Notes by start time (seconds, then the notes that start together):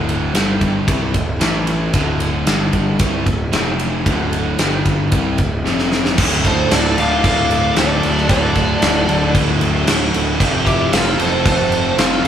Already playing: D1 D2 A2 D3
0.09 ride
0.34 G1 G2 D3 G3, snare, ride
0.61 kick, ride
0.87 C2 C3 G3 C4, kick, ride
1.14 D1 D2 A2, kick, ride
1.40 A1 A2 E3 A3, snare, ride
1.67 ride
1.94 D1 D2 A2 D3, kick, ride
2.20 ride
2.46 G1 G2 D3 G3, snare, ride
2.73 kick, ride
2.99 C2 C3 G3 C4, kick, ride
3.26 D1 D2 A2, kick, ride
3.53 F1 F2 C3 F3, snare, ride
3.79 ride
4.06 D1 D2 A2 D3, kick, ride
4.33 ride
4.59 G1 G2 D3 G3, snare, ride
4.85 kick, ride
5.11 C2 C3 G3 C4, kick, ride
5.38 D1 D2 A2, kick, ride
5.64 F1 F2 C3 F3, snare
5.79 snare
5.92 snare
6.05 snare
6.18 D1 D2 A2 D3, kick, crash
6.45 A4 C5, kick, crash
6.71 D1 A4 D5, snare, crash
6.97 D1 D2 A2 D3 D5 F5, crash
7.23 D1 D2 A2 D3 D5 F5, kick, crash
7.51 crash
7.76 D1 D2 A2 D3 A4 D5, snare, crash
8.03 D1, crash
8.17 snare
8.28 D1 D2 A2 D3 A4 D5, kick, crash
8.55 kick, crash
8.82 D1, snare, crash
9.08 D1 D2 A2 D3, crash
9.34 D1 D2 A2 D3, kick, crash
9.61 D1, crash
9.86 D1 D2 A2 D3, snare, crash
10.14 D1, crash
10.40 F1 F2 C3 F3, kick, crash
10.66 E4 G4, kick, crash
10.92 F1 F4 A4, snare, crash
11.18 F1 F2 C3 F3 A4 C5, crash
11.45 F1 F2 C3 F3 A4 C5, kick, crash
11.72 crash
11.97 F1 F2 C3 F3 F4 A4, snare, crash
12.24 F1 F4